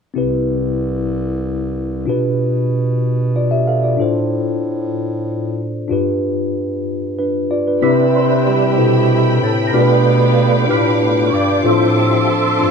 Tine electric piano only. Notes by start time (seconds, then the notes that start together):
0.14 C3 C4 E4 G4
0.18 B4
2.06 B2 D4 F4 G4 B4
3.36 F4 D5
3.51 G4 E5
3.68 A4 F5
3.83 F4 D5
3.97 A2 D4 F4 A4
4.02 C5
5.88 G2 D4 F4 G4
5.92 B4
7.19 D4 B4
7.51 F4 D5
7.68 D4 B4
7.82 C3 C4 E4 G4 B4
8.77 E4 G4 A4 C5
9.73 B2 D4 F4 G4 A4
9.81 B4
10.67 D4 F4 G4 B4
11.63 A2 D4 F4 A4 C5
12.59 D4 F4 A4 C5